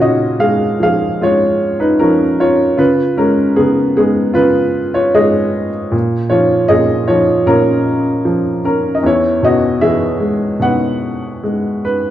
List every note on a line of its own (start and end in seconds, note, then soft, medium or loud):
0.00 2.75 A#2 medium
0.00 1.57 C#3 soft
0.00 1.22 F4 medium
0.00 0.38 F#4 medium
0.00 1.23 C#5 medium
0.00 0.43 D#5 medium
0.39 1.20 G#3 soft
0.39 0.78 G#4 soft
0.39 0.81 F5 medium
0.80 1.99 F3 soft
0.80 1.20 G#4 medium
0.80 1.20 F5 medium
1.21 2.75 G#3 soft
1.21 1.77 F4 medium
1.21 1.84 C#5 medium
1.80 1.98 D#4 soft
1.80 2.01 B4 medium
1.99 2.77 F3 soft
1.99 2.36 C#4 medium
1.99 2.40 A#4 medium
2.40 2.76 F4 medium
2.40 2.80 C#5 medium
2.77 3.57 C#3 medium
2.77 3.15 F4 medium
2.77 3.19 B4 medium
3.17 3.96 G#3 soft
3.17 3.55 C#4 medium
3.17 3.59 A#4 medium
3.56 4.34 C#3 medium
3.56 3.94 B3 medium
3.56 3.95 G#4 medium
3.97 5.13 G#3 soft
3.97 4.33 B3 soft
3.97 4.37 G#4 medium
4.34 5.89 C#3 soft
4.34 4.90 F4 medium
4.34 4.96 B4 medium
4.94 5.13 F4 soft
4.94 5.15 C#5 medium
5.14 5.91 G#3 soft
5.14 5.70 G#4 medium
5.14 5.70 D#5 medium
5.92 6.68 A#2 medium
6.30 7.07 F3 soft
6.30 6.67 F4 medium
6.30 6.71 C#5 medium
6.68 7.45 A#2 soft
6.68 7.06 G#4 medium
6.68 7.09 D#5 medium
7.08 8.24 F3 soft
7.08 7.45 F4 soft
7.08 7.48 C#5 medium
7.46 8.99 A#2 soft
7.46 8.60 C#4 medium
7.46 8.64 A#4 medium
8.25 9.01 F3 soft
8.65 8.94 C#4 soft
8.65 8.98 A#4 medium
8.95 9.03 D#5 medium
9.03 12.11 E2 medium
9.03 9.41 E4 medium
9.03 9.45 C#5 medium
9.42 10.58 B2 soft
9.42 9.80 F#4 medium
9.42 9.84 D#5 medium
9.81 11.41 E3 soft
9.81 10.58 G#4 medium
9.81 10.64 E5 medium
10.20 11.42 G#3 soft
10.60 12.11 B2 soft
10.60 11.83 B4 medium
10.60 11.83 F#5 medium
11.43 12.11 G#3 soft
11.85 12.11 B4 medium